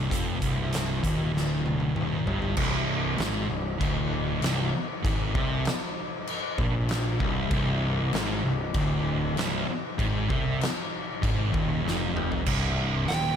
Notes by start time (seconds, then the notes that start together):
Already playing: C2
0.11 F1 F2, kick, closed hi-hat
0.41 C1 C2, kick, closed hi-hat
0.73 snare, closed hi-hat
1.02 D#1 D#2, kick, closed hi-hat
1.33 D1 D2, snare
1.66 high tom
1.80 high tom
1.95 D#1 D#2, mid tom
2.26 G1 G2, floor tom
2.42 floor tom
2.57 C1 C2, kick, crash
3.18 G#1 G#2, snare, crash
3.49 C1 C2
3.80 D1 D2, kick, crash
4.42 C1 C2, snare, crash
4.74 muted distorted electric guitar stroke, muted picked electric bass stroke
5.03 G#1 G#2, kick, crash
5.33 C2 C3, kick
5.65 snare, crash
6.27 crash
6.58 A#1 A#2, kick
6.89 snare, crash
7.20 C1 C2, kick
7.51 C1 C2, kick, crash
8.13 G#1 G#2, snare, crash
8.44 C1 C2
8.74 D1 D2, kick, crash
9.37 C1 C2, snare, crash
9.68 muted picked electric bass stroke, muted distorted electric guitar stroke
9.98 G#1 G#2, kick, crash
10.29 C2 C3, kick
10.61 snare, crash
11.22 G#1 G#2, kick, crash
11.52 D#1 D#2, kick
11.84 F1 F2
11.88 snare
12.17 mid tom
12.32 floor tom
12.46 C1 C2, kick, crash
13.08 D#1 D#2 G5, snare, open hi-hat